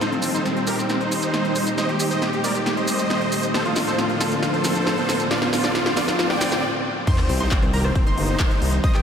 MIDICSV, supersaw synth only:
0, 0, Header, 1, 2, 480
1, 0, Start_track
1, 0, Tempo, 441176
1, 15, Time_signature, 4, 2, 24, 8
1, 9814, End_track
2, 0, Start_track
2, 0, Title_t, "Supersaw synth"
2, 0, Program_c, 0, 81
2, 15, Note_on_c, 0, 63, 72
2, 16, Note_on_c, 0, 72, 97
2, 104, Note_off_c, 0, 63, 0
2, 104, Note_off_c, 0, 72, 0
2, 135, Note_on_c, 0, 60, 66
2, 224, Note_off_c, 0, 60, 0
2, 255, Note_on_c, 0, 60, 66
2, 344, Note_off_c, 0, 60, 0
2, 375, Note_on_c, 0, 63, 77
2, 375, Note_on_c, 0, 72, 93
2, 464, Note_off_c, 0, 63, 0
2, 464, Note_off_c, 0, 72, 0
2, 495, Note_on_c, 0, 60, 65
2, 584, Note_off_c, 0, 60, 0
2, 615, Note_on_c, 0, 60, 67
2, 704, Note_off_c, 0, 60, 0
2, 734, Note_on_c, 0, 67, 80
2, 734, Note_on_c, 0, 70, 94
2, 823, Note_off_c, 0, 67, 0
2, 823, Note_off_c, 0, 70, 0
2, 855, Note_on_c, 0, 60, 67
2, 944, Note_off_c, 0, 60, 0
2, 974, Note_on_c, 0, 60, 64
2, 1063, Note_off_c, 0, 60, 0
2, 1095, Note_on_c, 0, 63, 81
2, 1095, Note_on_c, 0, 72, 97
2, 1839, Note_off_c, 0, 63, 0
2, 1839, Note_off_c, 0, 72, 0
2, 1935, Note_on_c, 0, 75, 96
2, 1936, Note_on_c, 0, 72, 73
2, 2024, Note_off_c, 0, 72, 0
2, 2024, Note_off_c, 0, 75, 0
2, 2055, Note_on_c, 0, 67, 65
2, 2144, Note_off_c, 0, 67, 0
2, 2175, Note_on_c, 0, 67, 65
2, 2264, Note_off_c, 0, 67, 0
2, 2296, Note_on_c, 0, 72, 79
2, 2296, Note_on_c, 0, 75, 93
2, 2384, Note_off_c, 0, 72, 0
2, 2384, Note_off_c, 0, 75, 0
2, 2415, Note_on_c, 0, 67, 68
2, 2504, Note_off_c, 0, 67, 0
2, 2535, Note_on_c, 0, 67, 65
2, 2624, Note_off_c, 0, 67, 0
2, 2655, Note_on_c, 0, 70, 77
2, 2655, Note_on_c, 0, 74, 94
2, 2744, Note_off_c, 0, 70, 0
2, 2744, Note_off_c, 0, 74, 0
2, 2776, Note_on_c, 0, 67, 71
2, 2864, Note_off_c, 0, 67, 0
2, 2896, Note_on_c, 0, 67, 64
2, 2984, Note_off_c, 0, 67, 0
2, 3015, Note_on_c, 0, 72, 81
2, 3015, Note_on_c, 0, 75, 101
2, 3759, Note_off_c, 0, 72, 0
2, 3759, Note_off_c, 0, 75, 0
2, 3855, Note_on_c, 0, 69, 74
2, 3856, Note_on_c, 0, 72, 95
2, 3944, Note_off_c, 0, 69, 0
2, 3944, Note_off_c, 0, 72, 0
2, 3976, Note_on_c, 0, 65, 68
2, 4064, Note_off_c, 0, 65, 0
2, 4095, Note_on_c, 0, 65, 66
2, 4184, Note_off_c, 0, 65, 0
2, 4215, Note_on_c, 0, 69, 75
2, 4215, Note_on_c, 0, 72, 94
2, 4304, Note_off_c, 0, 69, 0
2, 4304, Note_off_c, 0, 72, 0
2, 4336, Note_on_c, 0, 65, 66
2, 4424, Note_off_c, 0, 65, 0
2, 4456, Note_on_c, 0, 65, 63
2, 4544, Note_off_c, 0, 65, 0
2, 4576, Note_on_c, 0, 65, 82
2, 4576, Note_on_c, 0, 69, 95
2, 4664, Note_off_c, 0, 65, 0
2, 4664, Note_off_c, 0, 69, 0
2, 4696, Note_on_c, 0, 65, 69
2, 4784, Note_off_c, 0, 65, 0
2, 4816, Note_on_c, 0, 65, 62
2, 4904, Note_off_c, 0, 65, 0
2, 4937, Note_on_c, 0, 69, 81
2, 4937, Note_on_c, 0, 72, 98
2, 5680, Note_off_c, 0, 69, 0
2, 5680, Note_off_c, 0, 72, 0
2, 5775, Note_on_c, 0, 74, 95
2, 5776, Note_on_c, 0, 65, 75
2, 5864, Note_off_c, 0, 65, 0
2, 5864, Note_off_c, 0, 74, 0
2, 5895, Note_on_c, 0, 65, 64
2, 5984, Note_off_c, 0, 65, 0
2, 6016, Note_on_c, 0, 65, 64
2, 6104, Note_off_c, 0, 65, 0
2, 6135, Note_on_c, 0, 65, 74
2, 6135, Note_on_c, 0, 74, 94
2, 6224, Note_off_c, 0, 65, 0
2, 6224, Note_off_c, 0, 74, 0
2, 6256, Note_on_c, 0, 65, 71
2, 6344, Note_off_c, 0, 65, 0
2, 6376, Note_on_c, 0, 65, 65
2, 6464, Note_off_c, 0, 65, 0
2, 6495, Note_on_c, 0, 74, 97
2, 6496, Note_on_c, 0, 65, 80
2, 6584, Note_off_c, 0, 65, 0
2, 6584, Note_off_c, 0, 74, 0
2, 6616, Note_on_c, 0, 65, 69
2, 6704, Note_off_c, 0, 65, 0
2, 6736, Note_on_c, 0, 65, 65
2, 6824, Note_off_c, 0, 65, 0
2, 6855, Note_on_c, 0, 74, 77
2, 6856, Note_on_c, 0, 79, 97
2, 7215, Note_off_c, 0, 74, 0
2, 7216, Note_off_c, 0, 79, 0
2, 7696, Note_on_c, 0, 63, 76
2, 7696, Note_on_c, 0, 72, 97
2, 7784, Note_off_c, 0, 63, 0
2, 7784, Note_off_c, 0, 72, 0
2, 7816, Note_on_c, 0, 60, 65
2, 7904, Note_off_c, 0, 60, 0
2, 7937, Note_on_c, 0, 60, 68
2, 8025, Note_off_c, 0, 60, 0
2, 8056, Note_on_c, 0, 63, 76
2, 8056, Note_on_c, 0, 72, 93
2, 8144, Note_off_c, 0, 63, 0
2, 8144, Note_off_c, 0, 72, 0
2, 8177, Note_on_c, 0, 60, 70
2, 8264, Note_off_c, 0, 60, 0
2, 8296, Note_on_c, 0, 60, 65
2, 8384, Note_off_c, 0, 60, 0
2, 8417, Note_on_c, 0, 67, 78
2, 8417, Note_on_c, 0, 70, 98
2, 8505, Note_off_c, 0, 67, 0
2, 8505, Note_off_c, 0, 70, 0
2, 8536, Note_on_c, 0, 60, 68
2, 8624, Note_off_c, 0, 60, 0
2, 8657, Note_on_c, 0, 60, 67
2, 8745, Note_off_c, 0, 60, 0
2, 8775, Note_on_c, 0, 72, 97
2, 8776, Note_on_c, 0, 63, 81
2, 9519, Note_off_c, 0, 63, 0
2, 9519, Note_off_c, 0, 72, 0
2, 9615, Note_on_c, 0, 72, 73
2, 9615, Note_on_c, 0, 75, 96
2, 9704, Note_off_c, 0, 72, 0
2, 9704, Note_off_c, 0, 75, 0
2, 9736, Note_on_c, 0, 67, 66
2, 9814, Note_off_c, 0, 67, 0
2, 9814, End_track
0, 0, End_of_file